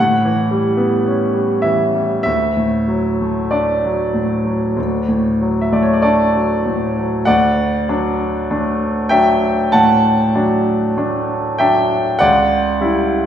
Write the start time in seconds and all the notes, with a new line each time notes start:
Already playing: F#5
0.00 A2
0.25 E3
0.51 G3
0.77 B3
1.06 C#4
1.34 G3
1.62 E3 E5
1.95 G3
2.23 D2 E5
2.57 A2
2.88 F#3
3.22 A3
3.51 D4 D5
3.85 F#3
4.14 A2
4.45 F#3
4.77 D2
5.09 A2
5.41 F#3
5.61 E5
5.72 A3 D5
5.83 C#5
5.93 D5
6.02 D4 A4 D5
6.36 F#3
6.66 A2
6.98 F#3
7.25 D2 D5 F#5
7.89 F#3 D4
8.51 A3 D4
9.09 F#3 D4 E5 G5
9.72 A2 F#5 A5
10.35 F#3 D4
10.97 A3 D4
11.58 F#3 D4 E5 G5
12.19 C#2 D5 F#5
12.81 G3 E4